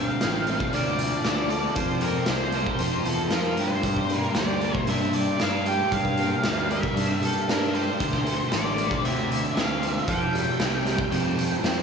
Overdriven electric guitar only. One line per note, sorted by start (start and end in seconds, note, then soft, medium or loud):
0.00 0.99 D3 medium
0.00 0.47 C4 medium
0.22 0.97 F3 medium
0.48 1.77 C4 medium
0.74 1.23 D4 medium
0.98 1.75 F3 medium
1.24 1.76 D4 medium
1.49 1.76 A4 medium
1.76 2.27 F3 medium
2.02 2.53 C4 medium
2.28 3.05 F3 medium
2.54 3.84 C4 medium
2.82 3.30 F4 medium
3.06 3.84 F3 medium
3.32 3.84 F4 medium
3.59 5.67 G4 medium
3.86 5.15 G2 medium
4.11 4.61 A#3 medium
4.36 5.14 G3 medium
4.63 5.92 A#3 medium
4.90 5.40 D4 medium
5.15 6.42 G3 medium
5.40 6.94 D4 medium
5.67 6.96 G4 medium
5.92 7.21 G2 medium
6.19 6.68 A#3 medium
6.43 7.20 G3 medium
6.69 7.99 A#3 medium
6.95 7.47 D4 medium
7.21 7.99 G3 medium
7.48 8.00 D4 medium
7.74 7.99 G4 medium
7.99 8.48 D3 medium
8.25 8.75 A3 medium
8.49 9.28 D3 medium
8.76 10.06 A3 medium
9.02 9.53 C4 medium
9.29 10.06 D3 medium
9.54 10.07 C4 medium
9.81 10.36 F4 medium
10.07 10.58 F3 medium
10.33 10.84 G3 medium
10.59 11.35 F3 medium
10.86 11.83 G3 medium
11.11 11.61 C4 medium
11.36 11.83 F3 medium
11.63 11.83 C4 medium